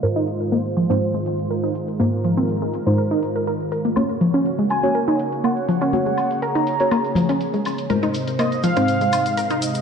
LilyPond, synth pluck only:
\new Staff \with { instrumentName = "Synth pluck" } { \time 4/4 \key f \phrygian \tempo 4 = 122 bes'16 ees'16 r8 bes16 r16 f16 c'16 r16 aes16 r8 bes'16 ees'16 r8 | bes16 r16 f16 c'16 r16 aes16 r8 bes'16 ees'16 r16 bes'16 bes'16 r16 bes'16 bes16 | bes16 r16 f16 des'16 r16 aes16 r8 bes'16 ees'16 r8 bes16 r16 f16 des'16 | r16 aes16 r8 bes'16 ees'16 r8 bes16 r16 f16 des'16 r16 aes16 r8 |
bes'16 ees'16 r8 bes16 r16 f16 c'16 r16 aes16 r8 bes'16 ees'16 r8 | }